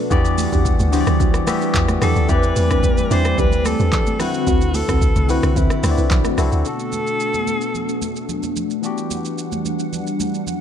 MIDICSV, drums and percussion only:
0, 0, Header, 1, 2, 480
1, 0, Start_track
1, 0, Key_signature, 1, "minor"
1, 0, Tempo, 545455
1, 96, Time_signature, 4, 2, 24, 8
1, 9334, End_track
2, 0, Start_track
2, 0, Title_t, "Drums"
2, 96, Note_on_c, 9, 36, 119
2, 96, Note_on_c, 9, 82, 76
2, 184, Note_off_c, 9, 36, 0
2, 184, Note_off_c, 9, 82, 0
2, 221, Note_on_c, 9, 82, 57
2, 309, Note_off_c, 9, 82, 0
2, 334, Note_on_c, 9, 63, 70
2, 336, Note_on_c, 9, 46, 61
2, 336, Note_on_c, 9, 82, 106
2, 422, Note_off_c, 9, 63, 0
2, 424, Note_off_c, 9, 46, 0
2, 424, Note_off_c, 9, 82, 0
2, 462, Note_on_c, 9, 36, 95
2, 463, Note_on_c, 9, 82, 59
2, 550, Note_off_c, 9, 36, 0
2, 551, Note_off_c, 9, 82, 0
2, 573, Note_on_c, 9, 36, 105
2, 577, Note_on_c, 9, 82, 80
2, 661, Note_off_c, 9, 36, 0
2, 665, Note_off_c, 9, 82, 0
2, 701, Note_on_c, 9, 63, 82
2, 701, Note_on_c, 9, 82, 59
2, 789, Note_off_c, 9, 63, 0
2, 789, Note_off_c, 9, 82, 0
2, 814, Note_on_c, 9, 63, 53
2, 817, Note_on_c, 9, 46, 52
2, 817, Note_on_c, 9, 82, 85
2, 902, Note_off_c, 9, 63, 0
2, 905, Note_off_c, 9, 46, 0
2, 905, Note_off_c, 9, 82, 0
2, 939, Note_on_c, 9, 82, 54
2, 942, Note_on_c, 9, 37, 95
2, 1027, Note_off_c, 9, 82, 0
2, 1030, Note_off_c, 9, 37, 0
2, 1055, Note_on_c, 9, 64, 71
2, 1056, Note_on_c, 9, 36, 117
2, 1059, Note_on_c, 9, 82, 68
2, 1143, Note_off_c, 9, 64, 0
2, 1144, Note_off_c, 9, 36, 0
2, 1147, Note_off_c, 9, 82, 0
2, 1179, Note_on_c, 9, 37, 90
2, 1181, Note_on_c, 9, 82, 56
2, 1267, Note_off_c, 9, 37, 0
2, 1269, Note_off_c, 9, 82, 0
2, 1295, Note_on_c, 9, 63, 82
2, 1296, Note_on_c, 9, 46, 58
2, 1296, Note_on_c, 9, 82, 99
2, 1298, Note_on_c, 9, 37, 94
2, 1383, Note_off_c, 9, 63, 0
2, 1384, Note_off_c, 9, 46, 0
2, 1384, Note_off_c, 9, 82, 0
2, 1386, Note_off_c, 9, 37, 0
2, 1421, Note_on_c, 9, 82, 49
2, 1509, Note_off_c, 9, 82, 0
2, 1533, Note_on_c, 9, 64, 80
2, 1536, Note_on_c, 9, 36, 94
2, 1536, Note_on_c, 9, 39, 102
2, 1537, Note_on_c, 9, 82, 78
2, 1621, Note_off_c, 9, 64, 0
2, 1624, Note_off_c, 9, 36, 0
2, 1624, Note_off_c, 9, 39, 0
2, 1625, Note_off_c, 9, 82, 0
2, 1658, Note_on_c, 9, 37, 88
2, 1658, Note_on_c, 9, 82, 60
2, 1661, Note_on_c, 9, 63, 80
2, 1746, Note_off_c, 9, 37, 0
2, 1746, Note_off_c, 9, 82, 0
2, 1749, Note_off_c, 9, 63, 0
2, 1774, Note_on_c, 9, 37, 90
2, 1775, Note_on_c, 9, 64, 76
2, 1777, Note_on_c, 9, 46, 54
2, 1777, Note_on_c, 9, 82, 92
2, 1862, Note_off_c, 9, 37, 0
2, 1863, Note_off_c, 9, 64, 0
2, 1865, Note_off_c, 9, 46, 0
2, 1865, Note_off_c, 9, 82, 0
2, 1900, Note_on_c, 9, 82, 48
2, 1988, Note_off_c, 9, 82, 0
2, 2015, Note_on_c, 9, 82, 74
2, 2016, Note_on_c, 9, 36, 118
2, 2103, Note_off_c, 9, 82, 0
2, 2104, Note_off_c, 9, 36, 0
2, 2139, Note_on_c, 9, 82, 53
2, 2227, Note_off_c, 9, 82, 0
2, 2254, Note_on_c, 9, 46, 61
2, 2254, Note_on_c, 9, 82, 104
2, 2255, Note_on_c, 9, 63, 74
2, 2342, Note_off_c, 9, 46, 0
2, 2342, Note_off_c, 9, 82, 0
2, 2343, Note_off_c, 9, 63, 0
2, 2381, Note_on_c, 9, 36, 90
2, 2381, Note_on_c, 9, 37, 97
2, 2381, Note_on_c, 9, 82, 57
2, 2469, Note_off_c, 9, 36, 0
2, 2469, Note_off_c, 9, 37, 0
2, 2469, Note_off_c, 9, 82, 0
2, 2493, Note_on_c, 9, 36, 108
2, 2495, Note_on_c, 9, 82, 82
2, 2581, Note_off_c, 9, 36, 0
2, 2583, Note_off_c, 9, 82, 0
2, 2620, Note_on_c, 9, 82, 59
2, 2621, Note_on_c, 9, 63, 78
2, 2708, Note_off_c, 9, 82, 0
2, 2709, Note_off_c, 9, 63, 0
2, 2735, Note_on_c, 9, 63, 56
2, 2737, Note_on_c, 9, 46, 53
2, 2737, Note_on_c, 9, 82, 88
2, 2823, Note_off_c, 9, 63, 0
2, 2825, Note_off_c, 9, 46, 0
2, 2825, Note_off_c, 9, 82, 0
2, 2857, Note_on_c, 9, 82, 55
2, 2861, Note_on_c, 9, 37, 95
2, 2945, Note_off_c, 9, 82, 0
2, 2949, Note_off_c, 9, 37, 0
2, 2975, Note_on_c, 9, 36, 115
2, 2976, Note_on_c, 9, 64, 67
2, 2978, Note_on_c, 9, 82, 69
2, 3063, Note_off_c, 9, 36, 0
2, 3064, Note_off_c, 9, 64, 0
2, 3066, Note_off_c, 9, 82, 0
2, 3100, Note_on_c, 9, 82, 56
2, 3188, Note_off_c, 9, 82, 0
2, 3215, Note_on_c, 9, 46, 57
2, 3215, Note_on_c, 9, 82, 102
2, 3216, Note_on_c, 9, 63, 76
2, 3217, Note_on_c, 9, 37, 91
2, 3303, Note_off_c, 9, 46, 0
2, 3303, Note_off_c, 9, 82, 0
2, 3304, Note_off_c, 9, 63, 0
2, 3305, Note_off_c, 9, 37, 0
2, 3340, Note_on_c, 9, 82, 48
2, 3428, Note_off_c, 9, 82, 0
2, 3454, Note_on_c, 9, 64, 80
2, 3455, Note_on_c, 9, 36, 96
2, 3455, Note_on_c, 9, 39, 101
2, 3455, Note_on_c, 9, 82, 77
2, 3542, Note_off_c, 9, 64, 0
2, 3543, Note_off_c, 9, 36, 0
2, 3543, Note_off_c, 9, 39, 0
2, 3543, Note_off_c, 9, 82, 0
2, 3578, Note_on_c, 9, 82, 62
2, 3582, Note_on_c, 9, 63, 80
2, 3666, Note_off_c, 9, 82, 0
2, 3670, Note_off_c, 9, 63, 0
2, 3692, Note_on_c, 9, 37, 90
2, 3695, Note_on_c, 9, 46, 55
2, 3695, Note_on_c, 9, 64, 77
2, 3695, Note_on_c, 9, 82, 93
2, 3780, Note_off_c, 9, 37, 0
2, 3783, Note_off_c, 9, 46, 0
2, 3783, Note_off_c, 9, 64, 0
2, 3783, Note_off_c, 9, 82, 0
2, 3819, Note_on_c, 9, 82, 50
2, 3907, Note_off_c, 9, 82, 0
2, 3934, Note_on_c, 9, 82, 80
2, 3935, Note_on_c, 9, 36, 117
2, 4022, Note_off_c, 9, 82, 0
2, 4023, Note_off_c, 9, 36, 0
2, 4059, Note_on_c, 9, 82, 56
2, 4147, Note_off_c, 9, 82, 0
2, 4174, Note_on_c, 9, 46, 65
2, 4174, Note_on_c, 9, 82, 100
2, 4175, Note_on_c, 9, 63, 71
2, 4262, Note_off_c, 9, 46, 0
2, 4262, Note_off_c, 9, 82, 0
2, 4263, Note_off_c, 9, 63, 0
2, 4301, Note_on_c, 9, 36, 92
2, 4301, Note_on_c, 9, 82, 61
2, 4302, Note_on_c, 9, 37, 97
2, 4389, Note_off_c, 9, 36, 0
2, 4389, Note_off_c, 9, 82, 0
2, 4390, Note_off_c, 9, 37, 0
2, 4413, Note_on_c, 9, 36, 109
2, 4416, Note_on_c, 9, 82, 84
2, 4501, Note_off_c, 9, 36, 0
2, 4504, Note_off_c, 9, 82, 0
2, 4539, Note_on_c, 9, 82, 57
2, 4541, Note_on_c, 9, 63, 78
2, 4627, Note_off_c, 9, 82, 0
2, 4629, Note_off_c, 9, 63, 0
2, 4655, Note_on_c, 9, 63, 56
2, 4657, Note_on_c, 9, 46, 53
2, 4657, Note_on_c, 9, 82, 84
2, 4743, Note_off_c, 9, 63, 0
2, 4745, Note_off_c, 9, 46, 0
2, 4745, Note_off_c, 9, 82, 0
2, 4778, Note_on_c, 9, 82, 54
2, 4781, Note_on_c, 9, 37, 96
2, 4866, Note_off_c, 9, 82, 0
2, 4869, Note_off_c, 9, 37, 0
2, 4895, Note_on_c, 9, 36, 118
2, 4896, Note_on_c, 9, 64, 67
2, 4899, Note_on_c, 9, 82, 72
2, 4983, Note_off_c, 9, 36, 0
2, 4984, Note_off_c, 9, 64, 0
2, 4987, Note_off_c, 9, 82, 0
2, 5018, Note_on_c, 9, 37, 95
2, 5021, Note_on_c, 9, 82, 54
2, 5106, Note_off_c, 9, 37, 0
2, 5109, Note_off_c, 9, 82, 0
2, 5135, Note_on_c, 9, 46, 57
2, 5135, Note_on_c, 9, 63, 77
2, 5135, Note_on_c, 9, 82, 100
2, 5137, Note_on_c, 9, 37, 88
2, 5223, Note_off_c, 9, 46, 0
2, 5223, Note_off_c, 9, 63, 0
2, 5223, Note_off_c, 9, 82, 0
2, 5225, Note_off_c, 9, 37, 0
2, 5260, Note_on_c, 9, 82, 51
2, 5348, Note_off_c, 9, 82, 0
2, 5374, Note_on_c, 9, 39, 100
2, 5374, Note_on_c, 9, 64, 83
2, 5374, Note_on_c, 9, 82, 81
2, 5375, Note_on_c, 9, 36, 94
2, 5462, Note_off_c, 9, 39, 0
2, 5462, Note_off_c, 9, 64, 0
2, 5462, Note_off_c, 9, 82, 0
2, 5463, Note_off_c, 9, 36, 0
2, 5496, Note_on_c, 9, 37, 88
2, 5496, Note_on_c, 9, 82, 63
2, 5501, Note_on_c, 9, 63, 79
2, 5584, Note_off_c, 9, 37, 0
2, 5584, Note_off_c, 9, 82, 0
2, 5589, Note_off_c, 9, 63, 0
2, 5613, Note_on_c, 9, 37, 94
2, 5615, Note_on_c, 9, 46, 55
2, 5615, Note_on_c, 9, 64, 77
2, 5615, Note_on_c, 9, 82, 92
2, 5701, Note_off_c, 9, 37, 0
2, 5703, Note_off_c, 9, 46, 0
2, 5703, Note_off_c, 9, 64, 0
2, 5703, Note_off_c, 9, 82, 0
2, 5739, Note_on_c, 9, 82, 48
2, 5827, Note_off_c, 9, 82, 0
2, 5854, Note_on_c, 9, 82, 71
2, 5942, Note_off_c, 9, 82, 0
2, 5978, Note_on_c, 9, 82, 51
2, 6066, Note_off_c, 9, 82, 0
2, 6093, Note_on_c, 9, 82, 96
2, 6095, Note_on_c, 9, 63, 63
2, 6181, Note_off_c, 9, 82, 0
2, 6183, Note_off_c, 9, 63, 0
2, 6222, Note_on_c, 9, 82, 54
2, 6310, Note_off_c, 9, 82, 0
2, 6336, Note_on_c, 9, 82, 71
2, 6424, Note_off_c, 9, 82, 0
2, 6459, Note_on_c, 9, 82, 55
2, 6461, Note_on_c, 9, 63, 73
2, 6547, Note_off_c, 9, 82, 0
2, 6549, Note_off_c, 9, 63, 0
2, 6575, Note_on_c, 9, 63, 51
2, 6576, Note_on_c, 9, 82, 79
2, 6663, Note_off_c, 9, 63, 0
2, 6664, Note_off_c, 9, 82, 0
2, 6698, Note_on_c, 9, 82, 51
2, 6786, Note_off_c, 9, 82, 0
2, 6816, Note_on_c, 9, 64, 61
2, 6819, Note_on_c, 9, 82, 63
2, 6904, Note_off_c, 9, 64, 0
2, 6907, Note_off_c, 9, 82, 0
2, 6942, Note_on_c, 9, 82, 51
2, 7030, Note_off_c, 9, 82, 0
2, 7056, Note_on_c, 9, 63, 69
2, 7057, Note_on_c, 9, 82, 91
2, 7144, Note_off_c, 9, 63, 0
2, 7145, Note_off_c, 9, 82, 0
2, 7182, Note_on_c, 9, 82, 44
2, 7270, Note_off_c, 9, 82, 0
2, 7294, Note_on_c, 9, 64, 73
2, 7296, Note_on_c, 9, 82, 70
2, 7382, Note_off_c, 9, 64, 0
2, 7384, Note_off_c, 9, 82, 0
2, 7418, Note_on_c, 9, 82, 57
2, 7422, Note_on_c, 9, 63, 72
2, 7506, Note_off_c, 9, 82, 0
2, 7510, Note_off_c, 9, 63, 0
2, 7535, Note_on_c, 9, 64, 69
2, 7536, Note_on_c, 9, 82, 81
2, 7623, Note_off_c, 9, 64, 0
2, 7624, Note_off_c, 9, 82, 0
2, 7660, Note_on_c, 9, 82, 44
2, 7748, Note_off_c, 9, 82, 0
2, 7775, Note_on_c, 9, 82, 70
2, 7863, Note_off_c, 9, 82, 0
2, 7899, Note_on_c, 9, 82, 50
2, 7987, Note_off_c, 9, 82, 0
2, 8014, Note_on_c, 9, 82, 98
2, 8015, Note_on_c, 9, 63, 64
2, 8102, Note_off_c, 9, 82, 0
2, 8103, Note_off_c, 9, 63, 0
2, 8142, Note_on_c, 9, 82, 55
2, 8230, Note_off_c, 9, 82, 0
2, 8256, Note_on_c, 9, 82, 77
2, 8344, Note_off_c, 9, 82, 0
2, 8379, Note_on_c, 9, 82, 54
2, 8381, Note_on_c, 9, 63, 75
2, 8467, Note_off_c, 9, 82, 0
2, 8469, Note_off_c, 9, 63, 0
2, 8496, Note_on_c, 9, 63, 51
2, 8497, Note_on_c, 9, 82, 81
2, 8584, Note_off_c, 9, 63, 0
2, 8585, Note_off_c, 9, 82, 0
2, 8618, Note_on_c, 9, 82, 49
2, 8706, Note_off_c, 9, 82, 0
2, 8736, Note_on_c, 9, 64, 59
2, 8740, Note_on_c, 9, 82, 63
2, 8824, Note_off_c, 9, 64, 0
2, 8828, Note_off_c, 9, 82, 0
2, 8862, Note_on_c, 9, 82, 53
2, 8950, Note_off_c, 9, 82, 0
2, 8975, Note_on_c, 9, 63, 72
2, 8977, Note_on_c, 9, 82, 87
2, 9063, Note_off_c, 9, 63, 0
2, 9065, Note_off_c, 9, 82, 0
2, 9102, Note_on_c, 9, 82, 45
2, 9190, Note_off_c, 9, 82, 0
2, 9213, Note_on_c, 9, 64, 73
2, 9216, Note_on_c, 9, 82, 72
2, 9301, Note_off_c, 9, 64, 0
2, 9304, Note_off_c, 9, 82, 0
2, 9334, End_track
0, 0, End_of_file